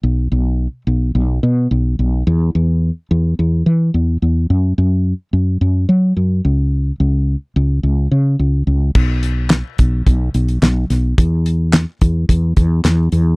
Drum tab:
CC |----------------|----------------|----------------|----------------|
HH |----------------|----------------|----------------|----------------|
CP |----------------|----------------|----------------|----------------|
SD |----------------|----------------|----------------|----------------|
BD |----------------|----------------|----------------|----------------|

CC |x---------------|----------------|
HH |--x-x-x-x-xxx-x-|x-x-x-x-x-x-x-x-|
CP |----x-------x---|----x-------x---|
SD |----o-------o-o-|----o-------o---|
BD |o-----o-o-------|o-----o-o-o-----|